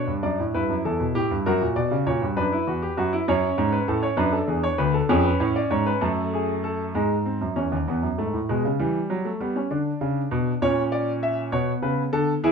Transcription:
grand piano
Already playing: D4 C#5
0.07 G2
0.23 F#2 D5
0.40 A2
0.54 G2 E4 B4
0.69 F#2
0.85 E2 A4
1.00 B2
1.15 A2 G4
1.31 G2
1.46 F#2 F#4 A#4
1.61 A#2
1.76 B2 D5
1.91 C#3
2.07 A#2 C#5
2.22 G2
2.37 F#2 D4 B4
2.52 E4
2.67 E2 F#4
2.82 G4
2.97 F#2 F#4
3.13 E4
3.28 F#2 C#4 C#5
3.58 G#2
3.72 B4
3.88 A2 A4
4.03 C#5
4.17 F#2 D4 B4
4.32 A4
4.48 E2 G#4
4.63 C#5
4.78 D2 B4
4.94 A4
5.09 F2 C#4 G#4
5.25 B4
5.40 A2 C#5
5.56 D5
5.71 G#2 C#5
5.86 B4
6.01 F#2 A3 A4
6.34 G#4
6.64 A4
6.95 G#2 G#3
7.26 C4
7.41 F#2
7.56 E2 C#4
7.72 D#2
7.88 E2 B3
8.02 F#2
8.18 G#2 A3
8.33 A2
8.49 B2 G#3
8.65 C#3
8.79 E3 G3
9.10 F#3
9.25 A3
9.41 G3 B3
9.56 C#4
9.71 D3 D4
10.01 C#3
10.31 B2
10.62 A#2 C#4 C#5
10.92 D5
11.23 E5
11.52 B2 B3 C#5
11.82 C#3 B4
12.13 D3 A4
12.44 E3 E4 G#4

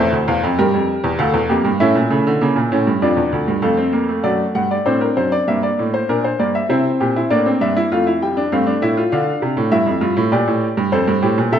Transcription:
grand piano
Already playing: E2 A3 C5 E5
0.12 D2
0.28 E2 F5
0.43 F2
0.59 G2 G3 A#4 G5
0.74 F2
1.04 E2
1.19 D2 A3 A4 F5
1.34 E2
1.49 F2 A#3 G4
1.65 G2
1.80 A2 C#4 E4 E5
1.95 A#2
2.10 C#3 A3
2.27 D3
2.41 C#3 A#3
2.56 A#2
2.72 A2 C#4
2.87 G2
3.02 F2 D4 F4 D5
3.17 E2
3.32 D2
3.48 G2
3.62 F2 A3 A4 F5
3.77 C4
3.93 A#3
4.09 A3
4.23 F#2 A3 F#4 D5
4.55 G2 F#5
4.71 D5
4.86 A2 C4 D4 C5
5.01 A#4
5.17 F#2 C5
5.32 D5
5.48 G2 A#3 E5
5.63 D5
5.79 A2
5.94 C5
6.09 A#2 D4 A#4
6.24 C5
6.39 G2 A#3 D5
6.55 E5
6.69 C3 C4 E4 C5
7.00 A#2 G4
7.16 E4
7.30 A2 A#3 D4 D5
7.46 C4
7.61 G2 D4 E5
7.77 E4
7.92 F2 A3 F4 F5
8.07 E4
8.22 G3 G5
8.37 D4
8.52 G2 A3 C4 F5
8.67 D4
8.82 A2 E4 E5
8.97 F4
9.12 D3 D4 F5
9.42 C3
9.57 A2
9.72 G2 E4 E5
9.86 F2
10.01 G2 F4
10.17 A2
10.32 A#2 G4 D5
10.48 A2
10.77 G2
10.92 F2 A4 C5
11.08 G2
11.22 A2 G4
11.38 A#2
11.52 C3 A4 E5

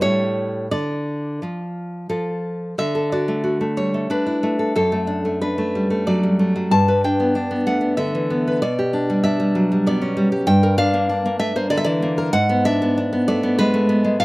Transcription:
nylon-string guitar
0.01 A2 G3 E4 C#5
0.71 D3 D5
1.42 F3 F4
2.09 F3 F4 A4
2.78 D3 E5
2.95 A4
3.12 F#4 D5
3.28 A3
3.44 F#4
3.61 A3
3.77 G3 C#5
3.94 A3
4.10 D4 B4
4.26 E4
4.43 A3
4.59 A4
4.76 F#2 A4
4.92 A3
5.07 D4
5.25 A3
5.42 D4 B4
5.58 A3
5.75 G3
5.90 A3
6.07 F#3 D5
6.23 G3
6.39 A3
6.56 F#3
6.71 G2 A5
6.88 B4
7.04 D4 G5
7.20 B3
7.35 D4
7.51 B3
7.67 A3 F#5
7.81 B3
7.97 D3 E5
8.15 E3
8.30 B3
8.48 B4
8.62 B2 D5
8.79 G4
8.93 D4
9.10 G3
9.24 D4 E5
9.40 G3
9.55 F#3
9.72 G3
9.86 B3 D5
10.02 C#4
10.17 G3
10.32 G4
10.47 G2 G5
10.63 A#4
10.78 D4 F5
10.94 A#3
11.09 D4
11.26 A#3
11.39 A3 E5
11.56 A#3 C5
11.70 D3 D5
11.77 E5
11.84 E3 D5
12.02 A#3
12.18 A#4
12.33 G#2 F#5
12.49 B3
12.65 D4 E5
12.82 B3
12.97 D4
13.13 B3
13.28 A3 D5
13.43 B3
13.59 G#3 B4
13.74 A3
13.89 B3
14.04 G#3
14.20 A2 F5

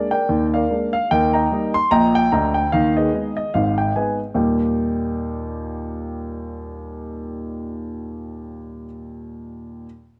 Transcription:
grand piano
0.11 A#4 D5 G5
0.29 D#2 D#3
0.54 A#4 D5 F5
0.70 G#3 A#3 D4
0.93 F5
1.11 D#2 D#3 A#4 D#5 G5
1.33 D#5 G5 A#5
1.52 G3 A#3 D#4
1.74 C6
1.91 A#1 A#2 D#5 G5 A#5
2.15 G5
2.32 D2 D3 D#5 G5 A#5
2.54 G5
2.72 D#2 D#3 F5
2.97 G#4 B4 D#5
3.13 G#3 B3 D#4
3.37 D#5
3.54 G#1 G#2 F5
3.78 G5
3.96 G#3 B3 D#4 B4 D#5 G#5
4.34 D#2 A#2 G3 A#3 D#4 G4 G5

